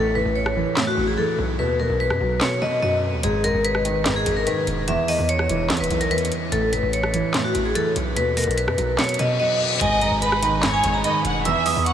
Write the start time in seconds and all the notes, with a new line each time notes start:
Already playing: A1 A2 A4
0.15 A2 B4
0.26 A1
0.36 C#5
0.46 cross-stick
0.56 E3
0.77 A2, snare, clap
0.87 F#4
0.97 A1 A2
1.07 G#4
1.18 E3 A4
1.39 B1
1.59 D#2 B2 B4
1.80 B2 A#4
1.90 B1
2.00 B4
2.10 F#2, cross-stick
2.21 B1 F#3
2.41 B2 C#5, snare, clap
2.62 B2 D#5
2.82 F#2 F#3 D#5
3.13 D#2
3.23 G#1 G#2 G#4, closed hi-hat
3.44 G#2 A#4, closed hi-hat
3.54 G#1
3.65 B4, closed hi-hat
3.75 cross-stick
3.85 D#3, closed hi-hat
4.05 G#2, snare, clap, closed hi-hat
4.16 G#4
4.26 G#1 G#2, closed hi-hat
4.37 A#4
4.47 D#3 B4, closed hi-hat
4.67 E1, closed hi-hat
4.88 E2 E5, closed hi-hat
5.08 E2 D#5, open hi-hat
5.19 E2
5.29 C#5, closed hi-hat
5.39 cross-stick
5.49 E1 E3, closed hi-hat
5.70 E2, snare, clap, closed hi-hat
5.77 E1 B4, closed hi-hat
5.84 closed hi-hat
5.90 B1 E2, closed hi-hat
6.01 A#4, closed hi-hat
6.11 E2 E3 B4, closed hi-hat
6.18 closed hi-hat
6.25 closed hi-hat
6.32 closed hi-hat
6.52 A1 A2 A4, closed hi-hat
6.73 A2 B4, closed hi-hat
6.83 A1
6.93 C#5, closed hi-hat
7.03 cross-stick
7.14 E3, closed hi-hat
7.34 A2, snare, clap, closed hi-hat
7.44 F#4
7.55 A1 A2, closed hi-hat
7.65 G#4
7.75 E3 A4, closed hi-hat
7.96 B1, closed hi-hat
8.16 D#2 B2 B4, closed hi-hat
8.37 B2 A#4, closed hi-hat, open hi-hat
8.44 B1, closed hi-hat
8.51 closed hi-hat
8.57 B4, closed hi-hat
8.68 F#2, cross-stick
8.78 B1 F#3, closed hi-hat
8.98 B2 C#5, snare, clap, closed hi-hat, reverse cymbal
9.04 closed hi-hat
9.09 closed hi-hat
9.14 closed hi-hat
9.19 B2 D#5, closed hi-hat
9.40 F#3 D#5
9.81 G#1 G#2 D#5 G#5, closed hi-hat, impact
10.01 G#2 A#5, closed hi-hat
10.12 G#1
10.22 B4 B5, closed hi-hat
10.32 cross-stick
10.42 D#3, closed hi-hat
10.63 G#2 C#5, snare, clap, closed hi-hat
10.74 G#5
10.84 G#1 G#2, closed hi-hat
10.94 A#5
11.04 D#3 D#5 B5, closed hi-hat
11.25 E1 F#5, closed hi-hat
11.45 E2 E5 E6, closed hi-hat
11.66 E2 D#6, open hi-hat
11.76 E2
11.86 F#5 C#6, closed hi-hat